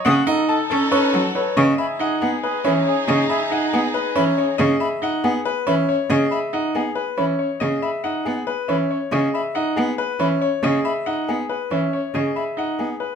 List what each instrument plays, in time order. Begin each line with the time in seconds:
Already playing: grand piano C#5 D#5
0.05 cello C#3, grand piano F#5, flute D#6
0.27 grand piano D#4 F#5, string section D#4 A4, oboe A4
0.48 oboe A4, grand piano A5, flute A5
0.70 cello C#4, grand piano A4, oboe A4
0.91 grand piano C#4 B4, oboe A4, flute C#6
1.13 cello F#3, oboe A4, grand piano F#5
1.35 oboe A4, grand piano B4 C#5
1.57 cello C#3, grand piano D#5, flute C#6
1.78 string section D#4 G#4, oboe G#4, grand piano E5, flute B5
1.99 grand piano D#4 F#5, oboe G#4
2.21 cello B3, oboe G#4, grand piano G#4, flute F#5
2.43 oboe G#4, grand piano B4
2.65 cello E3, grand piano C#4 E5, oboe G#4, flute B5
2.86 oboe G#4, grand piano C#5
3.07 cello C#3, grand piano G#4 D#5, oboe G#4
3.29 oboe G#4, grand piano E5, flute B5
3.50 grand piano D#4 F#5, oboe G#4
3.73 cello B3, grand piano G#4, oboe G#4, flute F#5
3.94 oboe G#4, grand piano B4
4.15 cello E3, grand piano C#4 E5, oboe G#4, flute B5
4.38 oboe G#4, grand piano C#5
4.58 cello C#3, grand piano G#4 D#5
4.80 grand piano E5, flute B5
5.02 grand piano D#4 F#5
5.23 cello B3, grand piano G#4, flute F#5
5.45 grand piano B4
5.67 cello E3, grand piano C#4 E5, flute B5
5.89 grand piano C#5
6.10 cello C#3, grand piano G#4 D#5
6.31 grand piano E5, flute B5
6.53 grand piano D#4 F#5
6.74 cello B3, grand piano G#4, flute F#5
6.95 grand piano B4
7.17 cello E3, grand piano C#4 E5, flute B5
7.39 grand piano C#5
7.60 cello C#3, grand piano G#4 D#5
7.82 grand piano E5, flute B5
8.04 grand piano D#4 F#5
8.25 cello B3, grand piano G#4, flute F#5
8.47 grand piano B4
8.68 cello E3, grand piano C#4 E5, flute B5
8.91 grand piano C#5
9.12 cello C#3, grand piano G#4 D#5
9.34 grand piano E5, flute B5
9.55 grand piano D#4 F#5
9.76 cello B3, grand piano G#4, flute F#5
9.98 grand piano B4
10.19 cello E3, grand piano C#4 E5, flute B5
10.41 grand piano C#5
10.63 cello C#3, grand piano G#4 D#5
10.85 grand piano E5, flute B5
11.06 grand piano D#4 F#5
11.28 cello B3, grand piano G#4, flute F#5
11.49 grand piano B4
11.71 cello E3, grand piano C#4 E5
11.93 grand piano C#5
12.14 cello C#3, grand piano G#4 D#5
12.36 grand piano E5, flute B5
12.57 grand piano D#4 F#5
12.79 cello B3, grand piano G#4, flute F#5
13.00 grand piano B4